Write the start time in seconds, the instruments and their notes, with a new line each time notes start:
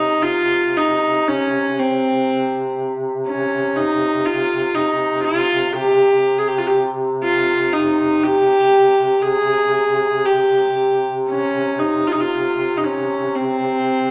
Already playing: duduk C3, viola D#4
0.22 viola F4
0.77 viola D#4
1.28 viola C#4
1.79 viola C4
3.27 viola C#4
3.76 viola D#4
4.25 viola F4
4.74 viola D#4
5.24 viola F4
5.76 viola G4
6.38 viola G#4
6.48 viola G4
6.58 viola F4
6.67 viola G4
7.24 viola F4
7.73 viola D#4
8.23 viola G4
9.22 viola G#4
10.25 viola G4
11.29 viola C#4
11.79 viola D#4
12.07 viola F4
12.12 viola D#4
12.20 viola F4
12.77 viola D#4
12.84 viola C#4
13.35 viola C4